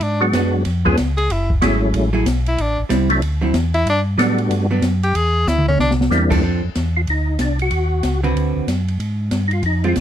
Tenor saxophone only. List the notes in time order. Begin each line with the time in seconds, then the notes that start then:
0.03 D4
1.17 G#4
1.32 E4
2.48 E4
2.62 D4
3.74 E4
3.90 D4
5.04 G4
5.16 G#4
5.49 E4
5.69 C#4
5.81 D4